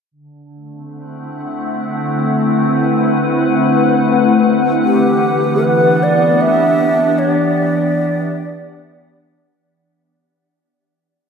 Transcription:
0.11 4.85 D3 medium
0.54 4.83 A3 medium
0.69 4.85 C4 medium
0.87 9.56 F#5 medium
1.00 6.10 E4 medium
2.23 6.71 B4 medium
4.84 9.56 E3 medium
4.84 5.65 G4 medium
5.11 9.56 B3 medium
5.46 9.58 D4 medium
5.63 6.05 B4 medium
5.97 9.55 G4 medium
6.03 6.43 D5 medium
6.41 7.20 E5 medium
7.19 7.30 C#5 medium
7.30 9.17 D5 medium

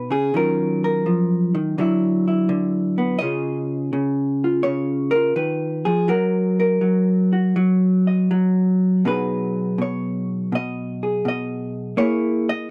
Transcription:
0.00 0.12 B2 medium
0.00 0.32 B3 soft
0.00 0.32 D#4 soft
0.00 0.11 B4 medium
0.11 0.34 C#3 medium
0.11 0.35 G#4 medium
0.34 1.06 D#3 medium
0.34 1.77 F#3 soft
0.34 1.75 C#4 soft
0.34 1.75 F4 soft
0.34 0.83 A#4 medium
0.84 1.78 A#4 medium
1.06 1.54 F3 medium
1.55 1.77 D#3 medium
1.78 2.48 D3 medium
1.78 3.21 F#3 medium
1.78 2.26 E4 medium
2.28 3.18 E4 soft
2.49 3.17 D3 medium
2.98 3.20 B3 medium
3.19 3.92 C#3 medium
3.19 6.08 C#4 soft
3.19 4.43 F4 soft
3.19 4.63 D#5 loud
3.23 5.11 G#4 soft
3.93 4.63 C#3 medium
4.44 5.14 F4 soft
4.63 5.35 C#3 medium
4.63 5.84 C#5 medium
5.11 5.36 A#4 medium
5.15 6.07 F4 soft
5.36 5.86 D#3 medium
5.36 5.84 B4 medium
5.85 6.09 F3 medium
5.85 6.09 G#4 medium
6.08 6.81 F#3 medium
6.08 7.32 F#4 medium
6.08 6.58 A#4 medium
6.60 8.31 A#4 medium
6.81 7.56 F#3 medium
7.33 9.03 F#4 soft
7.56 8.30 F#3 medium
8.07 9.03 D#5 soft
8.31 9.05 F#3 medium
9.05 9.77 B2 medium
9.05 11.97 F#3 soft
9.05 11.94 D#4 soft
9.05 11.02 G#4 soft
9.05 9.80 B4 medium
9.78 10.51 B2 medium
9.78 10.54 C#5 medium
10.52 11.24 B2 medium
10.52 11.26 D#5 medium
11.03 11.94 G#4 soft
11.25 11.94 B2 medium
11.25 11.98 D#5 medium
11.97 12.69 A#3 medium
11.97 12.70 E4 soft
11.97 12.70 G#4 soft
11.97 12.47 C#5 medium
12.49 12.70 D#5 medium

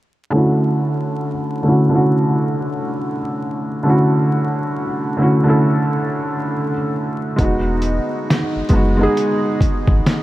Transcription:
0.31 1.28 D3 medium
0.31 1.29 A3 medium
0.31 1.30 C#4 medium
0.35 1.31 E4 medium
0.35 1.32 F#4 medium
1.63 1.84 D3 medium
1.63 1.85 A3 medium
1.63 1.86 C#4 medium
1.67 1.87 E4 medium
1.67 1.87 F#4 medium
1.89 3.16 D3 medium
1.89 3.17 A3 medium
1.89 3.18 C#4 medium
1.94 3.18 E4 medium
1.94 3.19 F#4 medium
3.83 4.81 D3 medium
3.83 4.82 A3 medium
3.83 4.83 C#4 medium
3.88 4.83 E4 medium
3.88 4.84 F#4 medium
5.17 5.38 D3 medium
5.17 5.38 A3 medium
5.17 5.39 C#4 medium
5.21 5.40 E4 medium
5.21 5.41 F#4 medium
5.44 6.70 D3 medium
5.44 6.71 A3 medium
5.44 6.71 C#4 medium
5.48 6.72 E4 medium
5.48 6.73 A4 medium
7.36 7.99 E1 loud
7.36 8.34 G#3 medium
7.36 8.35 B3 medium
7.36 kick loud
7.36 closed hi-hat medium
7.40 8.36 D#4 medium
7.40 8.37 F#4 medium
7.82 closed hi-hat medium
8.30 snare medium
8.30 closed hi-hat medium
8.56 8.62 F#1 soft
8.69 9.08 F#1 medium
8.69 8.90 G#3 medium
8.69 8.91 B3 medium
8.69 kick medium
8.69 closed hi-hat medium
8.73 8.92 D#4 medium
8.73 8.93 F#4 medium
8.97 10.23 G#3 medium
8.97 10.23 B3 medium
9.01 10.23 D#4 medium
9.01 10.23 G#4 medium
9.17 closed hi-hat medium
9.61 kick loud
9.61 closed hi-hat medium
9.87 10.01 G#1 medium
9.87 kick medium
10.06 snare loud
10.06 closed hi-hat medium

